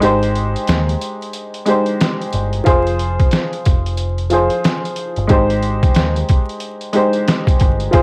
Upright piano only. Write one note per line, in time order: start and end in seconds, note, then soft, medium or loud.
0.00 1.07 G#3 loud
0.00 1.07 D#4 medium
0.00 1.08 G4 medium
0.00 1.09 C5 loud
1.66 2.47 G#3 medium
1.66 2.48 D#4 medium
1.66 2.49 G4 medium
1.66 2.49 C5 medium
2.64 3.70 F3 medium
2.64 3.71 F4 medium
2.64 3.72 G#4 medium
2.64 3.72 C5 loud
4.30 5.11 F3 medium
4.30 5.12 F4 medium
4.30 5.12 G#4 medium
4.30 5.13 C5 medium
5.28 6.34 G#3 medium
5.28 6.35 D#4 medium
5.28 6.35 G4 medium
5.28 6.36 C5 loud
6.93 7.75 G#3 medium
6.93 7.75 D#4 medium
6.93 7.76 G4 medium
6.93 7.77 C5 medium
7.91 8.03 F3 medium
7.91 8.03 F4 medium
7.91 8.03 G#4 medium
7.91 8.03 C5 medium